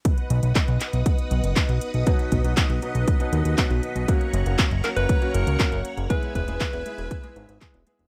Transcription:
<<
  \new Staff \with { instrumentName = "String machine" } { \time 4/4 \key b \major \tempo 4 = 119 << { <b' dis'' dis'''>1~ | <b' dis'' dis'''>1 | <cis'' ais'' cis'''>1 | <b' e'' e'''>1 | } \\ { fis''1~ | fis''1~ | fis''1 | gis''1 | } >> }
  \new Staff \with { instrumentName = "Alto saxophone" } { \time 4/4 \key b \major r1 | r1 | r4. ais'16 b'8. ais'4 r8 | b'8 b'2. r8 | }
  \new Staff \with { instrumentName = "Grand piano" } { \time 4/4 \key b \major r1 | <b, fis b dis' fis'>8. <b, fis b dis' fis'>16 r8 <b, fis b dis' fis'>8. <b, fis b dis' fis'>8. <b, fis b dis' fis'>4 | <fis ais cis' fis'>8. <fis ais cis' fis'>16 r8 <fis ais cis' fis'>8. <fis ais cis' fis'>8. <fis ais cis' fis'>4 | <gis b e' gis'>8. <gis b e' gis'>16 r8 <gis b e' gis'>8. <gis b e' gis'>8. <gis b e' gis'>16 r16 <gis b e' gis'>16 r16 | }
  \new Staff \with { instrumentName = "Analog synth bass" } { \clef bass \time 4/4 \key b \major r8 b,,16 b,,16 r16 b,,16 r16 b,,16 r8 b,,16 fis,,16 r16 b,,16 r16 b,,16 | r8 b,,16 b,,16 r16 b,,16 r16 b,,16 r8 dis,16 dis,16 r16 b,,16 r16 b,,16 | r8 fis,,16 fis,,16 r16 fis,,16 r16 fis,,16 r8 fis,,16 cis,16 r16 fis,,16 r16 fis,,16 | r8 e,,16 e,,16 r16 e,,16 r16 e,,16 r8 gis,,16 gis,,16 r16 e,,16 r16 e,,16 | }
  \new DrumStaff \with { instrumentName = "Drums" } \drummode { \time 4/4 <hh bd>16 hh16 hh16 hh16 <hc hh bd>16 hh16 <hc hh>16 hh16 <hh bd>16 hh16 hh16 hh16 <hc hh bd>16 hh16 hh16 hh16 | <hh bd>16 hh16 <hh bd>16 hh16 <hc hh bd>16 hh16 hh16 hh16 <hh bd>16 hh16 hh16 hh16 <hc hh bd>16 hh16 hh16 hh16 | <hh bd>16 hh16 hh16 hh16 <hc hh bd>16 hh16 <hc hh>16 hh16 <hh bd>16 hh16 hh16 hh16 <hc hh bd>16 hh16 hh16 hh16 | <hh bd>16 hh16 <hh bd>16 hh16 <hc hh bd>16 hh16 hh16 hh16 <hh bd>16 hh16 hh16 hh16 <hc hh bd>16 hh16 hh16 hh16 | }
>>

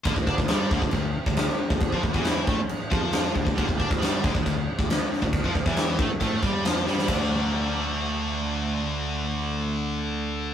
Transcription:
<<
  \new Staff \with { instrumentName = "Distorted electric guitar" } { \clef bass \time 4/4 \key d \minor \tempo 4 = 137 d16 d16 d'16 d16 g8 d16 d16 d8 r16 d8 r8 d16~ | d16 f16 d16 e8. a16 r8. f4 d16 d16 | d16 d16 d'16 d16 g8 d16 d16 d8 r16 d8 r8 d16~ | d16 f16 d16 e8. a16 r16 a8 g8 f8 g8 |
<d a d'>1~ | <d a d'>1 | }
  \new Staff \with { instrumentName = "Distorted electric guitar" } { \clef bass \time 4/4 \key d \minor d16 d16 d'16 d16 g8 d16 d16 d8 r16 d8 r8 d16~ | d16 f16 d16 e8. a16 r8. f4 d16 d16 | d16 d16 d'16 d16 g8 d16 d16 d8 r16 d8 r8 d16~ | d16 f16 d16 e8. a16 r16 a8 g8 f8 g8 |
<d a d'>1~ | <d a d'>1 | }
  \new Staff \with { instrumentName = "Fingered electric bass" } { \clef bass \time 4/4 \key d \minor d,16 d,16 d16 d,16 g,8 d,16 d,16 d,8 r16 d,8 r8 d,16~ | d,16 f,16 d,16 e,8. a,16 r8. f,4 d,16 d,16 | d,16 d,16 d16 d,16 g,8 d,16 d,16 d,8 r16 d,8 r8 d,16~ | d,16 f,16 d,16 e,8. a,16 r16 a,8 g,8 f,8 g,8 |
d,1~ | d,1 | }
  \new DrumStaff \with { instrumentName = "Drums" } \drummode { \time 4/4 <cymc bd>16 bd16 bd16 bd16 <cymc sn>8 bd16 bd16 <cymc bd>8. bd16 <cymc sn>16 sn8 bd16 | <cymc bd>16 bd16 bd16 bd16 <cymc sn>8 bd8 cymc8 bd8 <cymc sn>16 sn16 bd16 bd16 | <cymc bd>16 bd16 bd16 bd16 <cymc sn>8 bd16 bd16 <cymc bd>8. bd16 <cymc sn>8 sn16 bd16 | <cymc bd>16 bd16 bd16 bd16 <cymc sn>8 bd8 <cymc bd>8 bd8 <cymc sn>16 sn16 sn16 sn16 |
<cymc bd>4 r4 r4 r4 | r4 r4 r4 r4 | }
>>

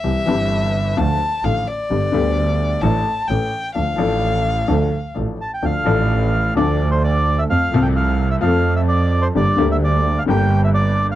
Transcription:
<<
  \new Staff \with { instrumentName = "Violin" } { \time 4/4 \key d \minor \tempo 4 = 129 e''2 a''4 f''8 d''8~ | d''2 a''4 g''4 | f''2. r4 | r1 |
r1 | r1 | }
  \new Staff \with { instrumentName = "Bandoneon" } { \time 4/4 \key d \minor r1 | r1 | r2. r8 a''16 g''16 | f''2 d''8. c''16 d''8. e''16 |
f''8. g''16 f''8. e''16 f''8. e''16 d''8. c''16 | d''8. e''16 d''8. f''16 g''8. e''16 d''8. f''16 | }
  \new Staff \with { instrumentName = "Upright piano" } { \clef bass \time 4/4 \key d \minor <c, c e g c' g'>8 <g,, g, e g c' g'>4. <d, d f a f'>8 r8 <a,, a, d f a f'>8 r8 | <g,, g, d g b g'>8 <d, d g b g'>4. <a,, a, e a d' a'>8 r8 <a,, a, e a cis' a'>8 r8 | <d, d f a d' a'>8 <a,, a, f a d' a'>4. <d, d f a d' a'>8 r8 <a,, a, f a d' a'>8 r8 | <d, d f a d' a'>8 <a,, a, f a d' a'>4. <d, d f a d' a'>2 |
<f, f a c' a'>8 <c, c f a c' a'>4. <f, f a c' a'>2 | <g,, g, d g bes g'>8 <d, d g bes g'>4. <g,, g, d g bes g'>2 | }
  \new Staff \with { instrumentName = "Double bass" } { \clef bass \time 4/4 \key d \minor c,8 g,,4. d,8 r8 a,,8 r8 | g,,8 d,4. a,,8 r8 a,,8 r8 | d,8 a,,4. d,8 r8 a,,8 r8 | d,8 a,,4. d,2 |
f,8 c,4. f,2 | g,,8 d,4. g,,2 | }
>>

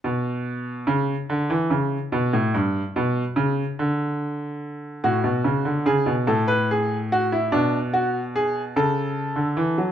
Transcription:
\new Staff \with { instrumentName = "Grand piano" } { \clef bass \time 6/8 \key fis \phrygian \tempo 4. = 48 << { b,4 cis8 d16 e16 cis8 b,16 a,16 | g,8 b,8 cis8 d4. | fis'4 gis'8 a'16 b'16 gis'8 fis'16 e'16 | d'8 fis'8 gis'8 a'4. | } \\ { r2. | r2. | a,16 b,16 cis16 d16 cis16 b,16 a,4. | b,4. cis8. d16 e16 fis16 | } >> }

